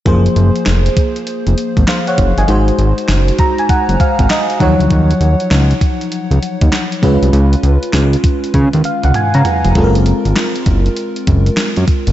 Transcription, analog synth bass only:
X:1
M:4/4
L:1/16
Q:"Swing 16ths" 1/4=99
K:Gblyd
V:1 name="Analog synth bass" clef=bass
G,,,2 G,,, z F,,,2 z3 F,,, z A,,, z2 G,,, =G,,, | A,,,2 A,,, z G,,,2 z3 G,,, z A,,, z2 E,, =D,, | E,,2 E,, z D,,2 z3 D,, z E,, z2 D,, C,, | D,,2 D,, z D,,2 z2 D, E,, z D,, z D, z F,,, |
G,,,3 A,,, z2 G,,,2 z2 G,,,2 z G,, z =G,,, |]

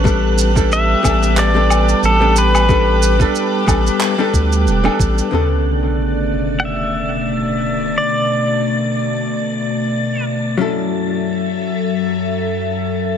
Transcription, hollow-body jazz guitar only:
X:1
M:4/4
L:1/16
Q:"Swing 16ths" 1/4=91
K:Bm
V:1 name="Hollow-body jazz guitar"
[G,B,DA]3 [G,B,DA]3 [G,B,DA]3 [G,B,DA]4 [G,B,DA]3 | [G,B,DA]3 [G,B,DA]3 [G,B,DA]3 [G,B,DA]4 [G,B,DA]3 | [C,D,B,A]16- | [C,D,B,A]16 |
[F,CEA]16 |]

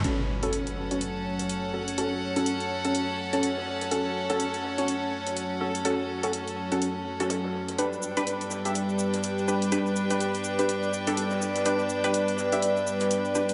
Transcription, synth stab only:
X:1
M:4/4
L:1/16
Q:"Swing 16ths" 1/4=124
K:F#phr
V:1 name="Synth stab"
[CFA]2 z [CFA]4 [CFc]2 z4 z [CFA] z | [CFA] z2 [CFA]4 [CFA] z3 [CFA]2 z3 | [CFA]2 z [CFA]4 [CFc]2 z4 z [CFA] z | [CFA] z2 [CFA]4 [CFA] z3 [CFA]2 z3 |
[DGB]2 z [DGB]4 [DGe]2 z4 z [DGB] z | [DGB] z2 [DGB]4 [DGB] z3 [DGA]2 z3 | [DGB]2 z [DGB]4 [DGe]2 z4 z [DGB] z |]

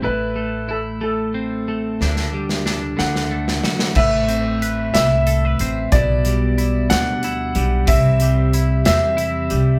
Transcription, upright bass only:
X:1
M:6/8
L:1/8
Q:3/8=61
K:Ador
V:1 name="Upright bass" clef=bass
A,,,6 | D,,3 D,,2 z | A,,,3 C,,2 A,,, | B,,,3 D,,2 B,,, |
C,,3 E,,2 C,, |]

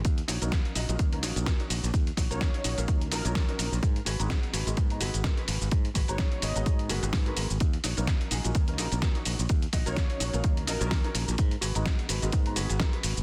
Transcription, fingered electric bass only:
X:1
M:4/4
L:1/16
Q:"Swing 16ths" 1/4=127
K:Ebm
V:1 name="Fingered electric bass" clef=bass
E,, z B,,, B,,, E,, z B,,, B,,, E,,2 B,,, B,,, E,, z B,,, B,,, | E,, z B,,, B,,, E,, z B,,, B,,, E,,2 B,,, B,,, E,, z B,,, B,,, | A,, z A,,, A,,, A,, z A,,, A,,, A,,2 A,,, A,,, z2 A,,, A,,, | A,, z A,,, A,,, A,, z A,,, A,,, A,,2 A,,, A,,, A,, z A,,, A,,, |
E,, z B,,, B,,, E,, z B,,, B,,, E,,2 B,,, B,,, E,, z B,,, B,,, | E,, z B,,, B,,, E,, z B,,, B,,, E,,2 B,,, B,,, E,, z B,,, B,,, | A,, z A,,, A,,, A,, z A,,, A,,, A,,2 A,,, A,,, A,, z A,,, A,,, |]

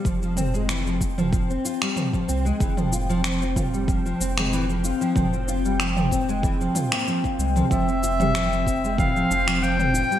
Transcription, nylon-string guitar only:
X:1
M:4/4
L:1/16
Q:"Swing 16ths" 1/4=94
K:Fm
V:1 name="Nylon-string guitar" clef=bass
F, F, C A, =E, F, F F, F, C F G, F, F, C A, | =E, F, F F, F, C F G, F, F, C A, E, F, F F, | F, C F G, F, F, C A, =E, F, F B, F, F A, F, | F, C F G, F, F, C A, =E, F, F F, F, C F G, |]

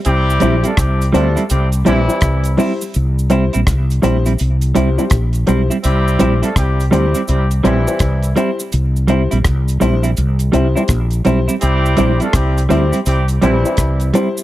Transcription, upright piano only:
X:1
M:4/4
L:1/16
Q:"Swing 16ths" 1/4=83
K:Cmix
V:1 name="Upright piano"
z2 [EGc] z3 [EGc] z3 [EGc] [EGc] z2 [EGc] z | z2 [EGc] z3 [EGc] z3 [EGc] [EGc] z2 [EGc] z | z2 [EGc] z3 [EGc] z3 [EGc] [EGc] z2 [EGc] z | z2 [EGc] z3 [EGc] z3 [EGc] [EGc] z2 [EGc] z |
z2 [EGc] z3 [EGc] z3 [EGc] [EGc] z2 [EGc] z |]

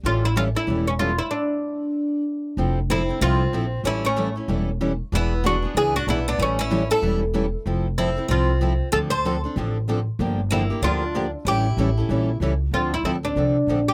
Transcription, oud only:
X:1
M:4/4
L:1/8
Q:"Swing" 1/4=189
K:Dm
V:1 name="Oud"
F E F E2 ^C F E | D6 z2 | z2 E2 F4 | E ^C2 z4 z |
E2 ^F2 ^G F E D | ^C E2 A2 z3 | z2 E2 F4 | A c2 z4 z |
z2 E2 F3 z | G6 z2 | F E E D4 G |]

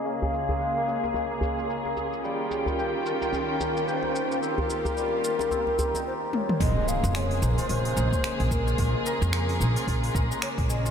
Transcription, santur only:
X:1
M:4/4
L:1/16
Q:"Swing 16ths" 1/4=110
K:Bbdor
V:1 name="Santur"
D A F B, A, B, A B, D B, D F B, B, A F | G, F D G, G B, F B, D F D B, G B, F B, | C F E B, G, B, F B, C B, C E z4 | A, A, A A, A, A B, F F A, A D A, A B, F |
F A, B F B A B, F F A, B A, B, B, D F |]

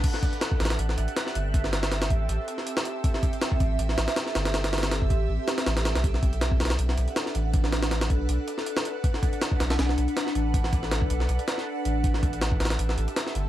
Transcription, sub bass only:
X:1
M:4/4
L:1/16
Q:"Swing 16ths" 1/4=160
K:Ador
V:1 name="Sub bass" clef=bass
z6 A,,,2 A,,,2 A,,, z3 G,,,2- | G,,,6 A,,,2 A,,, z6 z | z6 A,,,2 A,,,2 A,,, z3 G,,,2- | G,,,6 A,,,2 A,,, z3 A,,,3 B,,,- |
B,,,6 B,,,2 B,,,2 B,,, z3 A,,,2- | A,,,6 B,,,2 B,,, z6 z | z6 B,,,2 B,,,2 B,,, z3 A,,,2- | A,,,6 B,,,2 B,,, z4 z A,,,2- |
A,,,6 A,,,2 A,,,2 A,,, z3 G,,,2 |]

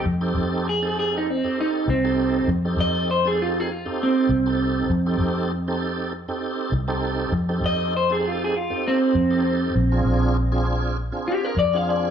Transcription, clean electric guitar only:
X:1
M:4/4
L:1/16
Q:"Swing 16ths" 1/4=99
K:Fmix
V:1 name="Clean electric guitar"
z4 _A2 A E C2 E2 C4 | z2 e2 c _A F A F2 C6- | C6 z8 z2 | z2 e2 c _A F A F2 C6- |
C6 z4 G B d f d2 |]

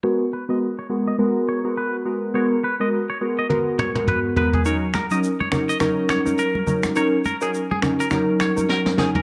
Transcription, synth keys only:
X:1
M:4/4
L:1/16
Q:"Swing 16ths" 1/4=104
K:G#m
V:1 name="Synth keys"
[G,B,FA] z2 [G,B,FA] z2 [G,B,FA] z [G,B,FA]3 [G,B,FA]3 [G,B,FA]2 | [G,B,FA] z2 [G,B,FA] z2 [G,B,FA] z [G,B,FA]3 [G,B,FA]3 [G,B,FA]2 | [F,CDA] z2 [F,CDA] z2 [F,CDA] z [F,CDA]3 [F,CDA]3 [F,CDA]2 | [F,CDA] z2 [F,CDA] z2 [F,CDA] z [F,CDA]3 [F,CDA]3 [F,CDA]2 |]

